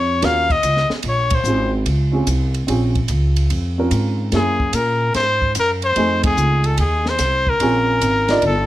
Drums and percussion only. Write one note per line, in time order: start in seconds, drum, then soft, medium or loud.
0.22 kick soft
0.22 snare soft
0.22 ride medium
0.50 kick medium
0.50 ride soft
0.63 kick soft
0.63 hi-hat pedal medium
0.63 ride medium
0.77 snare soft
0.90 snare soft
1.03 kick soft
1.03 ride medium
1.30 kick medium
1.30 ride medium
1.44 hi-hat pedal medium
1.86 kick soft
1.86 ride medium
2.27 kick soft
2.27 hi-hat pedal medium
2.27 ride medium
2.54 ride soft
2.68 kick soft
2.68 ride medium
2.95 kick soft
2.95 ride soft
3.08 kick soft
3.08 hi-hat pedal medium
3.08 ride medium
3.36 ride soft
3.50 kick soft
3.50 ride medium
3.91 kick soft
3.91 hi-hat pedal medium
3.91 ride medium
4.32 kick soft
4.32 snare soft
4.32 ride medium
4.60 kick medium
4.73 kick soft
4.73 hi-hat pedal soft
4.73 ride medium
5.14 kick soft
5.14 snare soft
5.14 ride medium
5.42 kick medium
5.55 kick soft
5.55 hi-hat pedal medium
5.55 ride medium
5.82 ride soft
5.96 kick soft
5.96 ride medium
6.24 kick medium
6.24 ride medium
6.37 hi-hat pedal medium
6.64 ride soft
6.78 kick soft
6.78 ride medium
7.06 snare soft
7.19 kick soft
7.19 snare soft
7.19 hi-hat pedal medium
7.19 ride medium
7.47 kick soft
7.60 kick soft
7.60 ride medium
8.01 kick soft
8.01 hi-hat pedal soft
8.01 ride medium
8.28 snare soft
8.28 ride soft
8.42 kick soft
8.42 ride medium